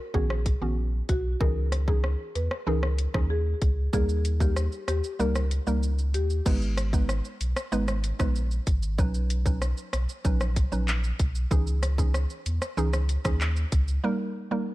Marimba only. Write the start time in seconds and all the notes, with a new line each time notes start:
0.14 G#4
1.09 F#4
1.41 A#4
1.88 G#4
2.35 B4
2.67 A#4
3.30 G#4
3.93 G#4
4.41 G4
4.88 G4
5.20 A#4
6.14 G4